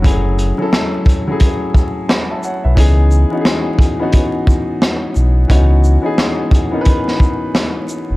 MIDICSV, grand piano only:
0, 0, Header, 1, 2, 480
1, 0, Start_track
1, 0, Tempo, 681818
1, 30, Time_signature, 4, 2, 24, 8
1, 5750, End_track
2, 0, Start_track
2, 0, Title_t, "Grand piano"
2, 0, Program_c, 0, 0
2, 0, Control_c, 0, 64, 127
2, 0, Note_on_c, 0, 54, 91
2, 0, Note_on_c, 0, 57, 83
2, 0, Note_on_c, 0, 61, 81
2, 0, Note_on_c, 0, 64, 78
2, 0, Note_on_c, 0, 66, 107
2, 14, Note_off_c, 0, 54, 0
2, 14, Note_on_c, 0, 54, 87
2, 22, Note_off_c, 0, 57, 0
2, 22, Note_on_c, 0, 57, 81
2, 29, Note_off_c, 0, 61, 0
2, 29, Note_on_c, 0, 61, 76
2, 37, Note_off_c, 0, 64, 0
2, 37, Note_on_c, 0, 64, 78
2, 44, Note_on_c, 0, 68, 95
2, 292, Note_off_c, 0, 54, 0
2, 295, Note_off_c, 0, 57, 0
2, 299, Note_off_c, 0, 61, 0
2, 303, Note_off_c, 0, 64, 0
2, 307, Note_off_c, 0, 68, 0
2, 407, Note_on_c, 0, 54, 84
2, 414, Note_on_c, 0, 57, 80
2, 421, Note_on_c, 0, 61, 76
2, 429, Note_on_c, 0, 64, 80
2, 437, Note_on_c, 0, 69, 109
2, 737, Note_off_c, 0, 54, 0
2, 741, Note_off_c, 0, 57, 0
2, 744, Note_off_c, 0, 61, 0
2, 748, Note_off_c, 0, 64, 0
2, 752, Note_off_c, 0, 69, 0
2, 897, Note_on_c, 0, 54, 88
2, 905, Note_on_c, 0, 57, 82
2, 912, Note_on_c, 0, 61, 83
2, 920, Note_on_c, 0, 64, 79
2, 927, Note_on_c, 0, 68, 99
2, 1468, Note_on_c, 0, 83, 64
2, 1472, Note_on_c, 0, 78, 55
2, 1597, Note_off_c, 0, 54, 0
2, 1601, Note_off_c, 0, 57, 0
2, 1605, Note_off_c, 0, 61, 0
2, 1608, Note_off_c, 0, 64, 0
2, 1611, Note_off_c, 0, 83, 0
2, 1612, Note_off_c, 0, 68, 0
2, 1613, Note_off_c, 0, 78, 0
2, 1622, Note_on_c, 0, 81, 74
2, 1626, Note_on_c, 0, 76, 58
2, 1706, Note_off_c, 0, 81, 0
2, 1708, Note_off_c, 0, 76, 0
2, 1719, Note_on_c, 0, 78, 79
2, 1723, Note_on_c, 0, 73, 65
2, 1858, Note_off_c, 0, 78, 0
2, 1858, Note_on_c, 0, 76, 68
2, 1859, Note_off_c, 0, 73, 0
2, 1863, Note_on_c, 0, 71, 56
2, 1937, Note_on_c, 0, 52, 91
2, 1944, Note_on_c, 0, 59, 80
2, 1951, Note_on_c, 0, 61, 86
2, 1958, Control_c, 0, 64, 0
2, 1959, Note_on_c, 0, 63, 76
2, 1963, Note_off_c, 0, 66, 0
2, 1967, Note_on_c, 0, 68, 106
2, 2062, Control_c, 0, 64, 127
2, 2087, Note_off_c, 0, 76, 0
2, 2089, Note_off_c, 0, 71, 0
2, 2213, Note_off_c, 0, 52, 0
2, 2217, Note_off_c, 0, 59, 0
2, 2220, Note_off_c, 0, 61, 0
2, 2224, Note_off_c, 0, 63, 0
2, 2228, Note_off_c, 0, 68, 0
2, 2326, Note_on_c, 0, 52, 85
2, 2334, Note_on_c, 0, 59, 82
2, 2341, Note_on_c, 0, 61, 85
2, 2349, Note_on_c, 0, 63, 83
2, 2356, Note_on_c, 0, 66, 80
2, 2383, Note_off_c, 0, 66, 0
2, 2402, Note_on_c, 0, 68, 91
2, 2657, Note_off_c, 0, 52, 0
2, 2660, Note_off_c, 0, 59, 0
2, 2664, Note_off_c, 0, 61, 0
2, 2668, Note_off_c, 0, 63, 0
2, 2695, Note_off_c, 0, 68, 0
2, 2806, Note_on_c, 0, 52, 88
2, 2814, Note_on_c, 0, 59, 87
2, 2822, Note_on_c, 0, 61, 86
2, 2829, Note_on_c, 0, 63, 83
2, 2836, Note_on_c, 0, 66, 101
2, 3512, Note_off_c, 0, 52, 0
2, 3516, Note_off_c, 0, 59, 0
2, 3519, Note_off_c, 0, 61, 0
2, 3523, Note_off_c, 0, 63, 0
2, 3527, Note_off_c, 0, 66, 0
2, 3857, Note_on_c, 0, 52, 86
2, 3865, Note_on_c, 0, 59, 83
2, 3872, Note_on_c, 0, 61, 85
2, 3880, Note_on_c, 0, 63, 79
2, 3887, Note_on_c, 0, 66, 102
2, 4133, Note_off_c, 0, 52, 0
2, 4137, Note_off_c, 0, 59, 0
2, 4140, Note_off_c, 0, 61, 0
2, 4144, Note_off_c, 0, 63, 0
2, 4148, Note_off_c, 0, 66, 0
2, 4235, Note_on_c, 0, 52, 82
2, 4242, Note_on_c, 0, 59, 84
2, 4250, Note_on_c, 0, 61, 79
2, 4257, Note_on_c, 0, 63, 80
2, 4265, Note_on_c, 0, 68, 100
2, 4571, Note_off_c, 0, 52, 0
2, 4574, Note_off_c, 0, 59, 0
2, 4578, Note_off_c, 0, 61, 0
2, 4582, Note_off_c, 0, 63, 0
2, 4586, Note_off_c, 0, 68, 0
2, 4720, Note_on_c, 0, 52, 85
2, 4728, Note_on_c, 0, 59, 81
2, 4735, Note_on_c, 0, 61, 78
2, 4742, Note_on_c, 0, 63, 86
2, 4750, Note_on_c, 0, 70, 74
2, 4779, Note_off_c, 0, 70, 0
2, 4796, Note_on_c, 0, 71, 106
2, 5429, Note_off_c, 0, 52, 0
2, 5433, Note_off_c, 0, 59, 0
2, 5436, Note_off_c, 0, 61, 0
2, 5440, Note_off_c, 0, 63, 0
2, 5466, Note_off_c, 0, 71, 0
2, 5750, End_track
0, 0, End_of_file